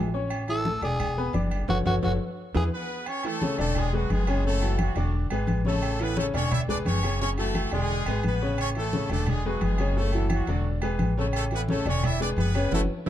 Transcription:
Already playing: A1
0.14 C#4 C#5 C#6
0.30 high conga, low agogo
0.48 E3 E4 A4 E5, high conga, low agogo
0.65 A3 A4 A5, high conga
0.82 E1 D4 G#4 D5 D6, high conga, low agogo
1.00 high conga, low conga, low agogo
1.17 B3 B4 B5, high conga
1.33 F#1 D4 D5 D6, high conga, low agogo
1.51 high conga, low agogo
1.68 F#1 F#4 A4 C#5, high conga, high timbale
1.86 F#1 F#4 A4 C#5, high conga, high timbale
2.03 F#1 F#4 A4 C#5, high conga, high timbale
2.55 E2 E4 G#4 B4, high conga, high timbale
2.73 B3 B4
3.06 C#4 C#5, high conga, low agogo
3.23 E3 A3 E4 A4, high conga, low agogo
3.42 C#3 C#4 C#5, high conga
3.58 E1 D3 A3 D4 A4 D5, high conga, low agogo
3.75 G#3 G#4, high conga, low conga, low agogo
3.93 F#3 G#3 F#4 G#4 B4, high conga
4.10 F#1 G#3 G#4, high conga, low agogo
4.27 C#3 C#4 C#5, high conga, low agogo
4.44 C#3 A3 C#4 A4 C#5, high conga
4.62 E3 E4 F#4, high conga, low agogo
4.78 F#3 F#4, high conga, low agogo
4.96 E1 D3 D4 D5, high conga, low agogo
5.13 high conga
5.30 G#1 G#3 G#4 B4, high conga, low agogo
5.47 A1, high conga, low agogo
5.65 C#3 A3 C#4 A4 C#5, high conga
5.82 low agogo
5.99 E3 B3 E4 A4 B4, high conga, low agogo
6.17 C#3 A3 C#4 A4 C#5, high conga
6.34 E1 D3 C#4 D4 C#5 D5, high conga, low agogo
6.51 E4 E5, high conga, low conga, low agogo
6.68 G#3 D4 G#4 B4 D5, high conga, low conga
6.85 F#1 C#4 C#5, high conga, low agogo
7.03 C#3 C#4 C#5, high conga, low agogo
7.20 C#3 C#4 C#5, high conga
7.37 E3 A3 E4 F#4 A4, high conga, low agogo
7.55 high conga, low agogo
7.71 E1 D3 G#3 D4 G#4 D5, high conga, low agogo
7.90 high conga
8.06 G#1 G#3 G#4 B4, high conga, low agogo
8.23 A1 B3 B4, high conga, low agogo
8.42 C#3 C#4 C#5
8.58 C#4 C#5, high conga, low agogo
8.75 E3 A3 E4 A4, high conga, low agogo
8.93 C#3 C#4 C#5, high conga
9.09 E1 D3 A3 D4 A4 D5, high conga, low agogo
9.26 G#3 G#4, high conga, low conga, low agogo
9.45 F#3 G#3 F#4 G#4 B4, high conga
9.61 F#1 G#3 G#4, high conga, low agogo
9.78 C#3 C#4 C#5, high conga, low agogo
9.96 C#3 A3 C#4 A4 C#5, high conga
10.12 E3 E4 F#4, high conga, low agogo
10.30 F#3 F#4, high conga, low agogo
10.47 E1 D3 D4 D5, high conga, low agogo
10.65 high conga
10.82 G#3 G#4 B4, high conga, low agogo
10.99 A1, high conga, low agogo
11.17 C#3 A3 C#4 A4 C#5
11.33 A3 A4, high conga, low agogo
11.51 E3 B3 E4 A4 B4, high conga, low agogo
11.68 C#3 A3 C#4 A4 C#5, high conga
11.85 E1 D3 C#4 D4 C#5 D5, high conga, low agogo
12.03 E4 E5, high conga, low conga, low agogo
12.20 G#3 D4 G#4 B4 D5, high conga
12.37 F#1 B3 B4, high conga, low agogo
12.55 C#3 C#4 C#5, low agogo
12.71 F#1 A3 C#4 E4 F#4 A4, high conga, high timbale
13.06 F#1

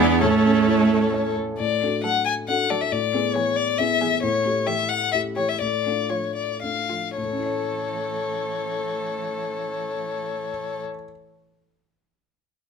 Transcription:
Already playing: E2 D4 E4 G#4 D5
0.00 B3 E4 G#4
0.21 A2 A3 C#4 A4 C#5
0.45 C#4
0.67 E4
0.90 A4
1.13 C#5
1.37 A4
1.59 A2 D5
1.83 D4 F#4 A4
2.03 F#3 A3 A4 F#5
2.25 G#5
2.48 D4 F#4 A4 F#5
2.70 F#3 A3 A4 D5
2.81 E5
2.92 A2 D5
3.14 B3 E4 G#4
3.35 E3 B3 G#4 C#5
3.56 D5
3.78 B3 E4 G#4 E5
4.01 E3 B3 G#4
4.23 A2 C#5
4.45 A3 E4 G4
4.67 E3 A3 G4 E5
4.89 F#5
5.12 A3 E4 G4 E5
5.36 E3 A3 G4 C#5
5.49 E5
5.61 A2 D5
5.86 A3 D4 F4
6.10 F3 A3 F4 C#5
6.36 D5
6.62 A3 D4 F4 F5
6.90 F3 A3 F4
7.17 A2 E3 A3 A4 C#5
7.25 A3
7.32 C#4
7.38 E4
7.45 C#5

